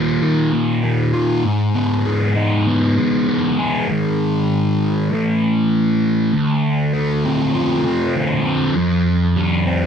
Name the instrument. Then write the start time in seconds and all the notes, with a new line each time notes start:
distorted electric guitar
Already playing: D#2 D#3 A#3 F4
0.22 D#3
0.52 A#2
0.83 D#3
1.14 F4
1.44 G#2
1.75 B3
2.05 G#4
2.36 D#4
2.67 B3
2.98 G#3
3.28 B3
3.58 G#4
3.88 G#2 D#3 G#3
5.10 A2 E3 A3
6.33 D2
6.93 A3
7.25 C4
7.55 F4
7.85 C4
8.15 D3
8.46 C4
8.76 F2
9.37 G3
9.67 C4